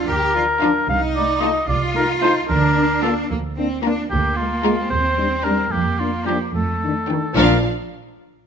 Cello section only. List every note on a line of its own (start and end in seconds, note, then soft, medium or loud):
0.08 0.35 G4 medium
0.34 0.42 F4 medium
0.61 0.69 D4 medium
0.89 1.68 D#4 medium
1.69 2.48 F4 medium
2.50 3.29 D4 medium
3.30 3.38 A#3 soft
3.57 3.83 C4 medium
3.84 4.10 D4 medium
4.11 4.90 A#3 medium
4.92 5.73 C4 medium
5.73 6.53 A#3 medium
6.55 6.95 A3 soft
7.36 7.66 A#2 medium